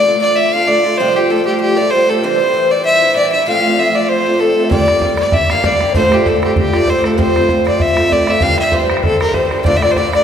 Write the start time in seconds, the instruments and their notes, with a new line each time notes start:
Already playing: fiddle D5, shakuhachi D5
0.05 steel-string acoustic guitar D3 A3 D4 F4
0.22 fiddle D5, shakuhachi D5
0.36 fiddle E5, shakuhachi E5
0.54 steel-string acoustic guitar D3 A3 D4 F4, fiddle F5, shakuhachi F5
0.67 steel-string acoustic guitar D3 A3 D4 F4, shakuhachi D5, fiddle D5
0.85 steel-string acoustic guitar D3 A3 D4 F4
0.98 steel-string acoustic guitar F2 C3 F3 G3 A3 F4, fiddle C5, shakuhachi C5
1.16 steel-string acoustic guitar F3 G3 A3 F4, fiddle G4
1.29 steel-string acoustic guitar F3 G3 A3 F4, shakuhachi A4, fiddle A4
1.46 fiddle G4, shakuhachi G4
1.61 fiddle G4, shakuhachi G4
1.77 steel-string acoustic guitar F3 G3 A3 F4, fiddle D5, shakuhachi D5
1.91 steel-string acoustic guitar F3 G3, fiddle C5, shakuhachi C5
1.95 steel-string acoustic guitar A3 F4
2.08 steel-string acoustic guitar F3 G3 A3 F4, shakuhachi A4, fiddle A4
2.23 steel-string acoustic guitar C3 E3 G3 D4 E4, shakuhachi C5, fiddle C5
2.40 steel-string acoustic guitar G3 D4 E4
2.54 steel-string acoustic guitar E3 G3 D4 E4
2.71 fiddle D5
2.83 shakuhachi E5, fiddle E5
3.02 steel-string acoustic guitar G3 D4 E4
3.16 steel-string acoustic guitar E3 G3 D4 E4, shakuhachi D5, fiddle D5
3.32 steel-string acoustic guitar G3 D4 E4, fiddle E5, shakuhachi E5
3.47 steel-string acoustic guitar F3 A3 C4 F4, shakuhachi F5, fiddle F5
3.65 steel-string acoustic guitar A3 C4 F4
3.78 steel-string acoustic guitar F3 A3 C4 F4, fiddle E5, shakuhachi E5
3.95 shakuhachi D5, fiddle D5
4.08 shakuhachi C5, fiddle C5
4.26 steel-string acoustic guitar A3 C4 F4
4.40 steel-string acoustic guitar F3 A3 C4 F4, shakuhachi A4, fiddle A4
4.57 steel-string acoustic guitar A3 C4 F4
4.65 shakuhachi E5
4.69 steel-string acoustic guitar G3 A#3 D4 G4, shakuhachi D5, fiddle D5, bodhran
4.80 bodhran
4.88 steel-string acoustic guitar A#3 D4 G4, bodhran
5.02 steel-string acoustic guitar G3 A#3 D4 G4, bodhran
5.16 shakuhachi D5, fiddle D5, bodhran
5.30 shakuhachi E5, bodhran
5.34 fiddle E5
5.50 steel-string acoustic guitar A#3 D4 G4, fiddle F5, bodhran
5.63 steel-string acoustic guitar G3 A#3 D4 G4, shakuhachi D5, fiddle D5, bodhran
5.79 steel-string acoustic guitar G4, shakuhachi D5, bodhran
5.83 steel-string acoustic guitar A#3 D4
5.92 steel-string acoustic guitar D2 A2 D3 A3, shakuhachi C5, fiddle C5, bodhran
5.97 steel-string acoustic guitar D4 F4
6.04 bodhran
6.10 steel-string acoustic guitar D3 A3 D4 F4, shakuhachi G4, fiddle G4, bodhran
6.22 steel-string acoustic guitar D3, shakuhachi A4, bodhran
6.27 steel-string acoustic guitar A3 D4 F4, fiddle A4
6.43 fiddle G4, bodhran
6.56 shakuhachi G4, fiddle G4, bodhran
6.73 steel-string acoustic guitar D3 A3 D4 F4, fiddle D5, bodhran
6.87 steel-string acoustic guitar D3 A3 D4 F4, shakuhachi C5, fiddle C5, bodhran
7.04 steel-string acoustic guitar D3 A3 D4 F4, shakuhachi A4, fiddle A4, bodhran
7.17 steel-string acoustic guitar F3 A3 C4 F4, shakuhachi C5, fiddle C5, bodhran
7.28 bodhran
7.35 steel-string acoustic guitar A3 C4 F4, bodhran
7.49 steel-string acoustic guitar F3 A3 C4 F4, bodhran
7.64 shakuhachi D5, fiddle D5, bodhran
7.78 shakuhachi E5, fiddle E5, bodhran
7.96 steel-string acoustic guitar A3 C4 F4, bodhran
8.09 steel-string acoustic guitar F3 A3 C4 F4, shakuhachi D5, fiddle D5, bodhran
8.24 steel-string acoustic guitar F4, shakuhachi E5, bodhran
8.28 steel-string acoustic guitar A3 C4, fiddle E5
8.37 shakuhachi F5, bodhran
8.41 steel-string acoustic guitar C3 E3 G3 D4 G4, fiddle F5
8.50 bodhran
8.55 shakuhachi E5, bodhran
8.59 steel-string acoustic guitar G3 D4 G4, fiddle E5
8.71 steel-string acoustic guitar E3 G3 D4, shakuhachi C5, fiddle C5, bodhran
8.75 steel-string acoustic guitar G4
8.90 fiddle G4, bodhran
8.97 bodhran
9.03 shakuhachi A4, fiddle A4, bodhran
9.21 steel-string acoustic guitar G3 D4 G4, fiddle A#4, bodhran
9.34 steel-string acoustic guitar E3 G3 D4 G4, fiddle C5, shakuhachi C5, bodhran
9.51 steel-string acoustic guitar G3 D4 G4, bodhran
9.64 steel-string acoustic guitar D2 A2 D3 A3 D4 F4, harp D5, shakuhachi D5, fiddle D5, bodhran
9.74 fiddle E5, bodhran
9.82 steel-string acoustic guitar D3 A3 D4 F4, fiddle D5, shakuhachi D5, harp D5, bodhran
9.91 fiddle C5
9.96 steel-string acoustic guitar D3 A3 D4 F4, harp D5, shakuhachi D5, fiddle D5, bodhran
10.13 harp D5, shakuhachi D5, fiddle D5, bodhran